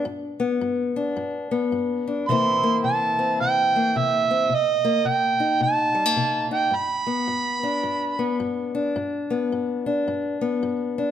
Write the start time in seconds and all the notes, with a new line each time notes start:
0.05 G2
0.40 B3
0.61 G2
0.96 D4
1.17 G2
1.51 B3
1.72 G2
2.08 D4
2.28 C3 E3 A#3 C4 E4 C6
2.63 A#3
2.84 C3 A5
3.19 C4
3.41 C3 G5
3.76 A#3
3.96 C3 E5
4.31 C4
4.50 C3
4.55 D#5
4.85 A#3
5.05 C3 G5
5.40 D#4
5.61 C3 A5
5.95 G3
6.06 A#3
6.16 C3
6.51 D#4 G5
6.71 G2
6.76 B5
7.07 B3
7.28 G2
7.63 D4
7.83 G2
8.19 B3
8.40 G2
8.75 D4
8.96 G2
9.30 B3
9.52 G2
9.86 D4
10.08 G2
10.41 B3
10.63 G2
10.98 D4